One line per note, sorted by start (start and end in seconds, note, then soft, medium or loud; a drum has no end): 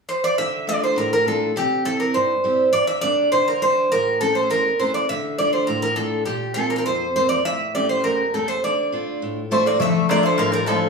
0.09 0.24 C5 medium
0.24 0.37 D5 medium
0.38 0.95 D3 medium
0.38 0.65 E5 medium
0.67 1.14 A3 soft
0.67 1.15 D4 soft
0.67 1.15 F4 medium
0.67 0.83 D5 medium
0.84 0.98 C5 medium
0.96 1.54 A2 medium
0.96 1.12 A#4 medium
1.13 1.26 A#4 medium
1.26 1.50 A3 soft
1.26 1.50 D4 soft
1.26 1.50 F4 soft
1.26 1.54 A4 medium
1.56 2.13 C3 medium
1.56 1.84 G4 medium
1.85 2.32 G3 soft
1.85 2.33 C4 soft
1.85 2.33 E4 soft
1.85 1.99 A4 medium
2.00 2.13 A#4 medium
2.14 2.72 G2 medium
2.14 2.69 C5 medium
2.44 2.68 G3 soft
2.44 2.68 C4 soft
2.44 2.68 E4 medium
2.73 3.31 G2 medium
2.73 2.87 D5 medium
2.87 3.01 E5 medium
3.01 3.50 G3 soft
3.01 3.50 A#3 soft
3.01 3.50 D4 medium
3.01 3.29 D5 medium
3.32 3.90 D3 medium
3.32 3.47 C5 medium
3.48 3.61 A#4 medium
3.62 3.85 G3 soft
3.62 3.86 A#3 soft
3.62 3.86 D4 soft
3.62 3.92 C5 medium
3.92 4.49 A2 medium
3.92 4.19 A#4 medium
4.20 4.68 E3 soft
4.20 4.68 A3 soft
4.20 4.68 C#4 medium
4.20 4.34 A4 medium
4.35 4.49 C5 medium
4.50 5.07 E2 medium
4.50 4.81 A#4 medium
4.79 5.03 E3 soft
4.79 5.03 A3 soft
4.79 5.04 C#4 medium
4.79 4.93 C5 medium
4.94 5.08 D5 medium
5.09 5.67 D3 medium
5.09 5.37 E5 medium
5.38 5.86 A3 soft
5.38 5.86 D4 soft
5.38 5.86 F4 soft
5.38 5.52 D5 medium
5.53 5.67 C5 medium
5.67 6.25 A2 medium
5.67 5.81 A#4 medium
5.82 5.96 A#4 medium
5.96 6.20 A3 soft
5.96 6.21 D4 soft
5.96 6.21 F4 medium
5.96 6.24 A4 medium
6.26 6.84 A#2 medium
6.26 6.54 G4 medium
6.54 7.03 A#3 medium
6.54 7.04 C4 soft
6.54 7.04 F4 soft
6.54 6.69 A4 medium
6.70 6.74 A#4 medium
6.76 6.79 A4 medium
6.76 6.85 A#4 medium
6.86 7.43 F2 medium
6.86 7.13 C5 medium
7.16 7.39 A#3 soft
7.16 7.39 C4 soft
7.16 7.40 F4 medium
7.16 7.28 C5 medium
7.29 7.43 D5 medium
7.45 8.02 A2 medium
7.45 7.72 E5 medium
7.75 8.22 A3 soft
7.75 8.22 C#4 soft
7.75 8.22 G4 soft
7.75 7.88 D5 medium
7.89 8.04 C5 medium
8.04 8.61 E2 medium
8.04 8.34 A#4 medium
8.34 8.57 A3 medium
8.34 8.57 C#4 soft
8.34 8.58 G4 medium
8.34 8.47 A4 medium
8.48 8.61 C5 medium
8.64 9.20 D3 medium
8.64 9.18 D5 medium
8.92 9.39 A3 soft
8.92 9.39 D4 soft
8.92 9.40 F4 medium
9.22 9.79 A2 medium
9.51 9.74 A3 soft
9.51 9.65 A3 medium
9.51 9.75 D4 soft
9.51 9.75 F4 soft
9.51 9.65 C5 medium
9.66 9.79 A#3 medium
9.66 9.81 D5 medium
9.80 10.37 D3 medium
9.80 10.07 A3 medium
9.80 10.08 E5 medium
9.80 darbuka dum medium
9.94 darbuka tek soft
10.09 10.57 A3 soft
10.09 10.23 A#3 medium
10.09 10.57 D4 soft
10.09 10.57 F4 soft
10.09 10.24 D5 medium
10.09 darbuka tek medium
10.23 10.37 A3 medium
10.23 10.40 C5 medium
10.38 10.89 A2 medium
10.38 10.51 F3 medium
10.38 10.52 A#4 medium
10.38 darbuka tek medium
10.52 10.66 G3 medium
10.52 10.67 A#4 medium
10.66 10.89 F3 medium
10.66 10.89 A3 soft
10.66 10.89 D4 soft
10.66 10.89 F4 soft
10.66 10.89 A4 medium
10.66 darbuka tek medium